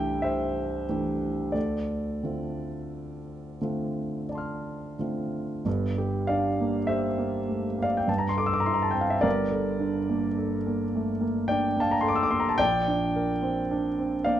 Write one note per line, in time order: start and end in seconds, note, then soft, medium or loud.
0.00 0.89 E3 soft
0.00 0.89 A3 soft
0.00 0.90 D4 soft
0.00 0.90 G4 soft
0.00 0.21 E5 medium
0.00 0.24 G5 medium
0.22 1.50 C5 medium
0.22 1.53 E5 medium
0.89 1.51 E3 soft
0.89 1.51 A3 soft
0.89 1.52 D4 soft
0.89 1.52 G4 soft
1.52 2.21 D2 soft
1.52 4.25 A4 soft
1.52 4.28 D5 medium
2.23 3.58 D3 soft
2.23 3.58 A3 soft
2.23 3.58 C4 soft
2.23 3.58 F4 soft
3.61 4.95 D3 soft
3.61 4.95 A3 soft
3.61 4.95 C4 soft
3.61 4.95 F4 soft
4.29 5.62 D5 soft
4.29 5.63 A5 soft
4.35 5.65 C6 soft
4.35 5.66 F6 soft
4.99 5.62 D3 soft
4.99 5.62 A3 soft
4.99 5.62 C4 soft
4.99 5.62 F4 soft
5.65 8.04 G1 soft
5.65 8.04 G2 soft
5.98 6.47 G4 soft
6.27 6.77 D4 soft
6.27 6.85 D5 medium
6.27 6.88 F5 medium
6.60 7.07 A#3 soft
6.87 7.37 G4 soft
6.87 7.80 C5 soft
6.87 7.84 E5 medium
7.18 7.66 A#3 soft
7.49 7.79 A3 soft
7.78 8.08 A#3 soft
7.82 7.98 D5 medium
7.82 7.99 F5 medium
7.97 8.11 G5 medium
8.08 9.21 G2 soft
8.08 8.21 A5 medium
8.18 8.30 A#5 medium
8.29 8.39 C6 medium
8.37 8.84 A4 soft
8.37 8.47 D6 medium
8.46 8.55 E6 medium
8.53 8.62 D6 medium
8.60 8.69 A#5 medium
8.65 9.13 E4 soft
8.65 8.76 C6 medium
8.74 8.84 A#5 medium
8.82 8.93 A5 medium
8.91 9.24 C4 soft
8.91 9.03 G5 medium
9.01 9.13 F5 medium
9.10 9.23 E5 medium
9.21 12.54 G1 soft
9.21 12.55 G2 soft
9.21 11.44 A#4 medium
9.21 11.47 D5 medium
9.51 9.98 A4 soft
9.80 10.27 D4 soft
10.10 10.56 A#3 soft
10.38 10.84 A4 soft
10.67 11.11 A#3 soft
10.95 11.23 A3 soft
11.21 11.65 A#3 soft
11.48 11.94 D4 soft
11.48 11.79 D5 medium
11.48 11.81 G5 medium
11.77 12.21 A#3 soft
11.77 11.94 A5 medium
11.81 11.93 F5 medium
11.91 12.03 A#5 medium
12.01 12.48 A4 soft
12.01 12.11 C6 medium
12.08 12.17 D6 medium
12.15 12.24 E6 medium
12.23 12.32 D6 medium
12.30 12.59 A#3 soft
12.30 12.40 C6 medium
12.40 12.49 A#5 medium
12.49 12.59 A5 medium
12.58 14.40 A#1 medium
12.58 14.40 A#2 medium
12.58 14.22 D5 medium
12.58 14.25 G5 loud
12.88 13.32 D4 soft
13.16 13.60 A#4 soft
13.42 13.87 C4 soft
13.71 14.15 D4 soft
13.99 14.40 C4 soft
14.24 14.40 A#3 soft
14.24 14.40 D5 medium
14.24 14.40 F5 medium